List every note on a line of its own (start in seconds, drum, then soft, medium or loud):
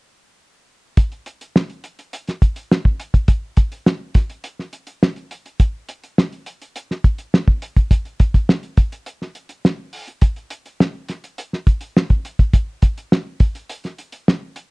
0.97 kick loud
0.97 closed hi-hat medium
1.12 closed hi-hat soft
1.26 closed hi-hat medium
1.41 closed hi-hat medium
1.56 snare loud
1.70 closed hi-hat soft
1.84 closed hi-hat medium
1.99 closed hi-hat soft
2.13 closed hi-hat medium
2.27 snare soft
2.27 closed hi-hat soft
2.42 kick medium
2.42 closed hi-hat medium
2.56 closed hi-hat medium
2.71 snare loud
2.85 kick medium
3.00 closed hi-hat medium
3.14 kick medium
3.14 closed hi-hat soft
3.28 kick loud
3.28 closed hi-hat medium
3.57 kick loud
3.57 closed hi-hat medium
3.72 closed hi-hat medium
3.86 snare loud
4.14 kick loud
4.14 snare soft
4.14 closed hi-hat medium
4.30 closed hi-hat medium
4.44 closed hi-hat medium
4.59 snare soft
4.73 closed hi-hat medium
4.87 closed hi-hat medium
5.03 snare loud
5.16 closed hi-hat soft
5.31 closed hi-hat medium
5.46 closed hi-hat soft
5.60 kick loud
5.60 closed hi-hat medium
5.89 closed hi-hat medium
6.04 closed hi-hat soft
6.18 snare loud
6.32 closed hi-hat soft
6.46 closed hi-hat medium
6.62 closed hi-hat soft
6.76 closed hi-hat loud
6.91 snare soft
7.04 kick medium
7.04 closed hi-hat medium
7.18 closed hi-hat medium
7.34 snare loud
7.48 kick medium
7.62 closed hi-hat medium
7.77 kick medium
7.77 closed hi-hat soft
7.91 kick loud
7.91 closed hi-hat medium
8.05 closed hi-hat soft
8.20 kick loud
8.20 closed hi-hat medium
8.34 kick medium
8.34 closed hi-hat medium
8.49 snare loud
8.63 closed hi-hat soft
8.77 kick loud
8.77 closed hi-hat medium
8.92 closed hi-hat medium
9.06 closed hi-hat medium
9.22 snare soft
9.35 closed hi-hat medium
9.49 closed hi-hat medium
9.65 snare loud
9.93 open hi-hat medium
10.08 closed hi-hat soft
10.22 kick loud
10.22 closed hi-hat loud
10.36 closed hi-hat soft
10.50 closed hi-hat medium
10.66 closed hi-hat medium
10.80 snare loud
11.09 snare soft
11.09 closed hi-hat medium
11.24 closed hi-hat medium
11.38 closed hi-hat medium
11.53 snare soft
11.67 kick medium
11.67 closed hi-hat medium
11.81 closed hi-hat medium
11.97 snare loud
12.10 kick medium
12.10 closed hi-hat soft
12.25 closed hi-hat medium
12.39 kick medium
12.39 closed hi-hat soft
12.53 kick loud
12.53 closed hi-hat medium
12.82 kick medium
12.82 closed hi-hat medium
12.98 closed hi-hat medium
13.12 snare loud
13.40 kick loud
13.40 closed hi-hat medium
13.55 closed hi-hat medium
13.69 closed hi-hat medium
13.84 snare soft
13.84 closed hi-hat soft
13.98 closed hi-hat medium
14.12 closed hi-hat medium
14.28 snare loud
14.56 closed hi-hat medium